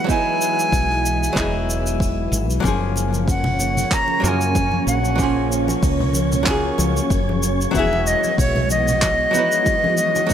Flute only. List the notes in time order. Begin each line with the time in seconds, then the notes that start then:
0.10 G#5
3.30 F#5
3.93 A#5
4.25 G#5 A#5
4.88 F#5
7.76 E5
8.07 D#5
8.40 C#5
8.71 D#5